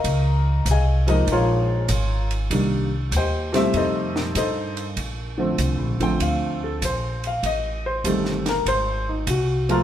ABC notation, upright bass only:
X:1
M:4/4
L:1/8
Q:"Swing" 1/4=98
K:Bb
V:1 name="Upright bass" clef=bass
_D,,2 C,,2 B,,,2 _A,,,2 | C,,2 E,,2 F,,2 G,,2 | B,,,2 (3C,, B,,, A,,, D,,2 B,,,2 | A,,,2 G,,,2 _A,,,2 C,,2 |]